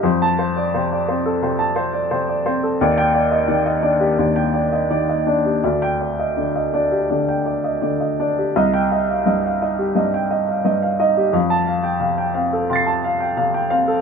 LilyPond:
<<
  \new Staff \with { instrumentName = "Upright piano" } { \time 4/4 \key f \mixolydian \tempo 4 = 86 << { r16 a''8 r2. r16 | r16 g''8 r2. r16 | r16 g''8 r2. r16 | r16 g''8 r2. r16 |
r16 a''8 r4 r16 <c''' a''' c''''>2 | } \\ { c''8 c''16 d''16 c''16 d''16 c''16 a'16 c''16 a''16 c''16 d''16 c''16 d''16 c''16 a'16 | d''8 d''16 ees''16 d''16 ees''16 d''16 g'16 d''16 g''16 d''16 ees''16 d''16 ees''16 d''16 g'16 | d''8 d''16 ees''16 d''16 ees''16 d''16 g'16 d''16 g''16 d''16 ees''16 d''16 ees''16 d''16 g'16 | ees''8 ees''16 f''16 ees''16 f''16 ees''16 g'16 ees''16 g''16 ees''16 f''16 ees''16 f''16 ees''16 g'16 |
f''8 f''16 g''16 f''16 g''16 f''16 a'16 f''16 a''16 f''16 g''16 f''16 g''16 f''16 a'16 | } >> }
  \new Staff \with { instrumentName = "Upright piano" } { \clef bass \time 4/4 \key f \mixolydian f,4 c8 c'8 c4 c8 c'8 | ees,4 ees8 d'8 ees,4 ees8 d'8 | d,4 d8 d'8 d4 d8 d'8 | c,4 g,8 ees'8 g,4 g,8 ees'8 |
f,4 c8 c'8 c4 c8 c'8 | }
>>